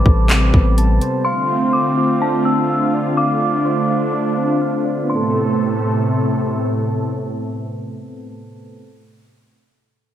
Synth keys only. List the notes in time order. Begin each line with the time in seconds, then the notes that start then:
Already playing: B4 C5 A5
0.06 A4
0.30 C4
0.53 B3
0.78 A5
1.02 C5
1.26 F5
1.74 C5
1.97 F4
2.22 D4
2.46 C4
2.70 F5
2.94 D5
3.18 F5
3.65 C5
3.90 F4
4.13 D4
4.38 C4
4.61 F5
4.85 D5
5.04 B3
5.10 C4
5.16 A4